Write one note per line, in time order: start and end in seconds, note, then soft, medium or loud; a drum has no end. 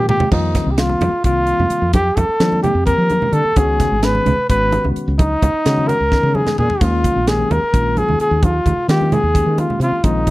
0.00 0.16 A#2 medium
0.00 0.26 D#3 medium
0.00 0.26 G#3 medium
0.00 0.26 A#3 medium
0.00 0.26 C4 medium
0.00 0.26 F4 medium
0.09 0.31 G4 medium
0.09 mid tom loud
0.09 low conga medium
0.20 floor tom medium
0.20 low conga medium
0.31 0.59 F2 medium
0.31 0.69 D#3 medium
0.31 0.69 G3 medium
0.31 0.69 A#3 medium
0.31 0.69 C4 medium
0.31 0.72 D#4 medium
0.31 0.70 F4 medium
0.31 kick medium
0.31 crash medium
0.31 high conga medium
0.55 kick medium
0.55 snare soft
0.55 closed hi-hat medium
0.55 low conga medium
0.66 0.94 C2 medium
0.71 0.79 G4 medium
0.78 1.10 D#3 medium
0.78 1.10 G3 medium
0.78 1.10 A#3 medium
0.78 1.10 C4 medium
0.78 1.24 F4 medium
0.78 1.10 F4 medium
0.78 snare medium
0.78 closed hi-hat medium
0.89 high conga medium
1.01 1.10 F2 medium
1.01 closed hi-hat medium
1.01 low conga medium
1.13 muted fretless electric bass stroke soft
1.24 1.52 C2 medium
1.24 1.88 D#3 medium
1.24 1.88 G3 medium
1.24 1.88 A#3 medium
1.24 1.88 C4 soft
1.24 1.90 F4 medium
1.24 1.88 F4 medium
1.24 kick medium
1.24 closed hi-hat medium
1.47 closed hi-hat medium
1.59 1.69 F2 medium
1.59 low conga medium
1.70 muted fretless electric bass stroke soft
1.70 closed hi-hat medium
1.82 2.10 F2 medium
1.93 2.18 G4 medium
1.93 kick loud
1.93 closed hi-hat medium
1.93 high conga medium
2.16 2.26 F2 medium
2.16 2.62 A4 medium
2.16 kick medium
2.16 closed hi-hat medium
2.16 low conga medium
2.29 muted fretless electric bass stroke soft
2.40 2.72 D#3 medium
2.40 2.68 F3 medium
2.40 2.72 G3 medium
2.40 2.72 A#3 medium
2.40 2.72 C4 medium
2.40 2.73 D4 medium
2.40 snare medium
2.40 closed hi-hat medium
2.52 high conga medium
2.63 2.85 G4 medium
2.63 closed hi-hat medium
2.63 low conga medium
2.75 2.93 F2 medium
2.86 3.50 D#3 medium
2.86 3.50 G3 soft
2.86 3.50 A#3 soft
2.86 3.50 C4 soft
2.86 3.50 G4 medium
2.86 3.35 A#4 medium
2.86 kick medium
2.86 closed hi-hat medium
2.98 3.17 F3 medium
3.10 closed hi-hat medium
3.10 high conga medium
3.22 low conga medium
3.32 3.42 D3 medium
3.32 3.59 A4 loud
3.32 closed hi-hat medium
3.44 muted fretless electric bass stroke soft
3.56 3.84 C#2 medium
3.56 3.94 D#3 medium
3.56 3.94 G#3 medium
3.56 3.94 B3 medium
3.56 3.94 C#4 medium
3.56 3.94 F#4 medium
3.56 4.05 G#4 medium
3.56 kick medium
3.56 closed hi-hat medium
3.56 high conga medium
3.80 kick medium
3.80 snare soft
3.80 closed hi-hat medium
3.80 low conga medium
3.91 4.19 G#1 medium
4.03 4.35 D#3 medium
4.03 4.35 G#3 medium
4.03 4.35 B3 medium
4.03 4.35 C#4 medium
4.03 4.35 G#4 medium
4.03 4.49 B4 loud
4.03 snare medium
4.03 closed hi-hat medium
4.15 high conga medium
4.26 4.35 C#2 medium
4.26 closed hi-hat medium
4.26 low conga medium
4.49 4.77 G#1 medium
4.49 5.12 D#3 medium
4.49 5.12 G#3 medium
4.49 5.12 B3 medium
4.49 5.13 C#4 medium
4.49 5.13 F#4 medium
4.49 4.89 B4 loud
4.49 kick loud
4.49 closed hi-hat medium
4.72 closed hi-hat medium
4.72 high conga medium
4.84 4.94 C#2 medium
4.84 low conga medium
4.96 muted fretless electric bass stroke soft
4.96 closed hi-hat medium
5.08 5.35 C#2 medium
5.19 5.89 D#4 medium
5.19 kick loud
5.19 closed hi-hat medium
5.19 high conga medium
5.19 low conga soft
5.42 5.51 C#2 medium
5.42 kick medium
5.42 closed hi-hat medium
5.42 low conga medium
5.54 muted fretless electric bass stroke soft
5.65 5.93 C#3 medium
5.65 5.97 D#3 medium
5.65 5.97 G#3 medium
5.65 5.97 B3 medium
5.65 5.97 C#4 medium
5.65 5.97 F#4 medium
5.65 snare medium
5.65 closed hi-hat medium
5.78 high conga medium
5.88 6.37 A#4 loud
5.88 closed hi-hat medium
5.88 low conga medium
6.00 6.19 C#2 medium
6.00 low conga soft
6.12 6.75 D#3 medium
6.12 6.75 G#3 medium
6.12 6.75 B3 soft
6.12 6.75 C#4 soft
6.12 6.75 D#4 medium
6.12 kick medium
6.12 snare soft
6.23 6.41 C#3 medium
6.23 high tom medium
6.35 6.58 G#4 medium
6.35 high conga medium
6.46 snare medium
6.46 low conga medium
6.58 6.68 A#2 medium
6.58 6.83 G#4 medium
6.58 floor tom medium
6.70 muted fretless electric bass stroke soft
6.70 floor tom medium
6.81 7.08 D#2 medium
6.81 7.18 D#3 medium
6.81 7.18 G#3 medium
6.81 7.18 A#3 medium
6.81 7.18 C#4 medium
6.81 7.29 F4 medium
6.81 7.19 F4 medium
6.81 kick loud
6.81 closed hi-hat medium
6.81 splash medium
6.81 high conga medium
7.04 kick medium
7.04 closed hi-hat medium
7.04 low conga medium
7.16 7.43 A#1 medium
7.27 7.59 D#3 medium
7.27 7.59 G#3 medium
7.27 7.59 A#3 medium
7.27 7.59 C#4 medium
7.27 7.59 G4 medium
7.27 7.53 G#4 medium
7.27 snare loud
7.27 closed hi-hat medium
7.39 high conga medium
7.51 7.60 D#2 medium
7.51 7.99 A#4 medium
7.51 closed hi-hat medium
7.51 low conga medium
7.63 muted fretless electric bass stroke soft
7.73 8.01 A#1 medium
7.73 8.36 D#3 medium
7.73 8.36 G#3 medium
7.73 8.36 A#3 medium
7.73 8.37 C#4 soft
7.73 8.36 F4 medium
7.73 kick medium
7.73 closed hi-hat medium
7.97 8.20 G#4 medium
7.97 closed hi-hat soft
7.97 high conga medium
8.09 8.18 D#2 medium
8.09 low conga medium
8.20 8.45 G#4 medium
8.20 muted fretless electric bass stroke soft
8.20 closed hi-hat medium
8.31 8.59 D#2 medium
8.43 8.89 F4 medium
8.43 kick medium
8.43 closed hi-hat medium
8.43 high conga loud
8.66 8.75 D#2 medium
8.66 kick medium
8.66 closed hi-hat medium
8.66 low conga medium
8.88 9.20 D#3 medium
8.88 9.16 D#3 medium
8.88 9.20 G#3 medium
8.88 9.20 A#3 medium
8.88 9.21 C#4 medium
8.88 9.21 F4 medium
8.88 9.14 G4 medium
8.88 snare medium
8.88 closed hi-hat medium
9.01 high conga medium
9.12 9.59 G#4 medium
9.12 closed hi-hat medium
9.12 low conga medium
9.23 9.42 D#2 medium
9.35 9.98 D#3 medium
9.35 9.98 G#3 soft
9.35 9.98 A#3 medium
9.35 9.98 C#4 soft
9.35 9.98 G4 medium
9.35 kick medium
9.35 closed hi-hat medium
9.46 9.65 D#3 medium
9.58 9.80 F4 medium
9.58 closed hi-hat medium
9.58 high conga medium
9.70 low conga medium
9.80 9.89 C3 medium
9.80 10.06 F4 medium
9.80 closed hi-hat medium
9.92 muted fretless electric bass stroke soft
10.03 10.30 A#1 medium
10.03 10.30 D#3 medium
10.03 10.30 G#3 medium
10.03 10.30 A#3 medium
10.03 10.30 C4 medium
10.03 10.30 D#4 medium
10.03 10.30 F4 medium
10.03 kick loud
10.03 closed hi-hat medium
10.03 high conga medium
10.27 kick medium
10.27 closed hi-hat medium
10.27 low conga medium